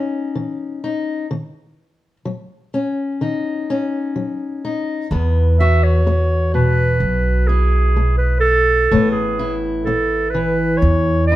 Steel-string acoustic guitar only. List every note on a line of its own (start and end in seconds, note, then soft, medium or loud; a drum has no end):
0.00 0.27 G#2 soft
0.00 1.25 C#4 soft
0.00 0.83 D#4 soft
0.35 1.21 E3 medium
0.84 1.26 D#4 soft
1.31 2.16 D#3 medium
2.25 3.11 F#3 medium
2.74 3.69 C#4 soft
3.21 4.07 D#3 soft
3.21 4.63 D#4 soft
3.70 5.06 C#4 soft
4.16 5.01 F#3 soft
4.65 5.06 D#4 medium
5.11 6.05 E2 medium
5.11 8.86 B3 medium
5.60 8.87 F#4 medium
6.07 muted steel-string acoustic guitar stroke medium
6.54 7.96 B2 medium
7.49 9.39 E4 soft
7.96 muted steel-string acoustic guitar stroke medium
8.91 9.86 A2 medium
8.91 11.36 B3 medium
9.39 11.30 E4 medium
9.87 muted steel-string acoustic guitar stroke medium
10.34 11.36 E3 medium
11.32 11.36 E4 medium